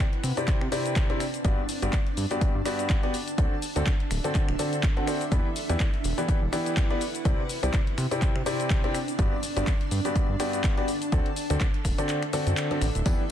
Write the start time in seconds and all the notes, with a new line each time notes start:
Already playing: C4 D4 E4 D5 F#5
0.00 shaker
0.13 closed hi-hat
0.24 C3, finger snap, open hi-hat, shaker
0.37 C3 C4 E4 G4 D5, closed hi-hat, shaker
0.48 kick, clap, closed hi-hat, shaker
0.61 C3, finger snap
0.72 C3 C4 E4 G4 D5, open hi-hat, shaker
0.86 closed hi-hat, shaker
0.96 kick, clap, closed hi-hat, shaker
1.10 C3 C4 E4 G4 D5, closed hi-hat
1.20 finger snap, open hi-hat, shaker
1.34 closed hi-hat, shaker
1.45 G1 G2 B3 F#4 G4 D5, kick, closed hi-hat, shaker
1.69 A5, open hi-hat, shaker
1.82 G1 G2 B3 F#4 G4 D5, closed hi-hat, shaker
1.93 kick, clap, closed hi-hat, shaker
2.07 closed hi-hat
2.17 G2, open hi-hat, shaker
2.31 G2 B3 F#4 G4 D5, closed hi-hat, shaker
2.41 kick, closed hi-hat, shaker
2.55 G2
2.66 G2 B3 F#4 G4 D5, finger snap, open hi-hat, shaker
2.79 closed hi-hat, shaker
2.90 kick, clap, closed hi-hat, shaker
3.03 B3 F#4 G4 D5, closed hi-hat
3.14 D4, open hi-hat, shaker
3.28 closed hi-hat, shaker
3.32 A4
3.38 D2 D3 C4 F#4 A4 D5 E5, kick, closed hi-hat, shaker
3.62 open hi-hat, shaker
3.76 D2 D3 C4 F#4 A4 D5, closed hi-hat, shaker
3.86 kick, clap, closed hi-hat, shaker
4.00 closed hi-hat
4.11 D1, finger snap, open hi-hat, shaker
4.24 D3 C4 F#4 A4 D5, closed hi-hat, shaker
4.35 kick, clap, closed hi-hat, shaker
4.49 D1, finger snap, closed hi-hat
4.59 D3 C4 F#4 A4 D5, open hi-hat, shaker
4.73 closed hi-hat, shaker
4.83 kick, clap, closed hi-hat, shaker
4.97 D3 C4 F#4 A4 F#5, closed hi-hat
5.07 C4 F#4 A4 D5, finger snap, open hi-hat, shaker
5.21 closed hi-hat, shaker
5.32 E2 E3 B3 E4 G4 D5, kick, closed hi-hat, shaker
5.47 B4
5.56 F#5, open hi-hat, shaker
5.69 E2 E3 B3 E4 G4 D5, closed hi-hat, shaker
5.80 kick, clap, closed hi-hat, shaker
5.94 closed hi-hat
6.04 E1, open hi-hat, shaker
6.18 E3 B3 E4 G4 D5, closed hi-hat, shaker
6.28 kick, closed hi-hat, shaker
6.42 E1
6.53 E3 B3 E4 G4 D5, finger snap, open hi-hat, shaker
6.66 closed hi-hat, shaker
6.77 kick, clap, closed hi-hat, shaker
6.90 B3 E4 G4 D5, closed hi-hat
7.01 C4, open hi-hat, shaker
7.15 closed hi-hat, shaker
7.25 C2 C3 C4 E4 G4 D5, kick, closed hi-hat, shaker
7.33 D4
7.49 D5, open hi-hat, shaker
7.63 C2 C3 C4 E4 G4 D5, closed hi-hat, shaker
7.74 kick, clap, closed hi-hat, shaker
7.87 closed hi-hat
7.98 C3, finger snap, open hi-hat, shaker
8.11 C3 C4 E4 G4 D5, closed hi-hat, shaker
8.22 kick, clap, closed hi-hat, shaker
8.36 C3, finger snap
8.46 C3 C4 E4 G4 D5, open hi-hat, shaker
8.60 closed hi-hat, shaker
8.70 kick, clap, closed hi-hat, shaker
8.84 C3 C4 E4 G4 D5, closed hi-hat
8.95 finger snap, open hi-hat, shaker
9.08 closed hi-hat, shaker
9.19 G1 G2 B3 F#4 G4 D5, kick, closed hi-hat, shaker
9.43 open hi-hat, shaker
9.48 A5
9.56 G1 G2 B3 F#4 G4 D5, closed hi-hat, shaker
9.67 kick, clap, closed hi-hat, shaker
9.81 closed hi-hat
9.91 G2, open hi-hat, shaker
10.05 G2 B3 F#4 G4 D5, closed hi-hat, shaker
10.16 kick, closed hi-hat, shaker
10.29 G2
10.40 G2 B3 F#4 G4 D5, finger snap, open hi-hat, shaker
10.53 closed hi-hat, shaker
10.64 kick, clap, closed hi-hat, shaker
10.77 B3 F#4 G4 D5, closed hi-hat
10.88 D4, open hi-hat, shaker
10.95 A4
11.02 closed hi-hat, shaker
11.12 D2 D3 C4 F#4 A4 D5, kick, closed hi-hat, shaker
11.21 E5
11.26 closed hi-hat
11.36 open hi-hat, shaker
11.50 D2 D3 C4 F#4 A4 D5, closed hi-hat, shaker
11.61 kick, clap, closed hi-hat, shaker
11.74 closed hi-hat
11.85 D1, finger snap, kick, open hi-hat, shaker
11.98 D3 C4 F#4 A4 D5, closed hi-hat, shaker
12.09 clap, closed hi-hat, shaker
12.23 finger snap, closed hi-hat
12.33 D3 C4 F#4 A4 D5, open hi-hat, shaker
12.47 F#2, closed hi-hat, shaker
12.57 clap, closed hi-hat, shaker
12.71 D3 C4 F#4 A4 D5, closed hi-hat
12.82 A1, finger snap, open hi-hat, shaker
12.95 D1, closed hi-hat, shaker
13.06 E2 E3 B3 E4 G4 D5, kick, closed hi-hat, ride, tambourine, shaker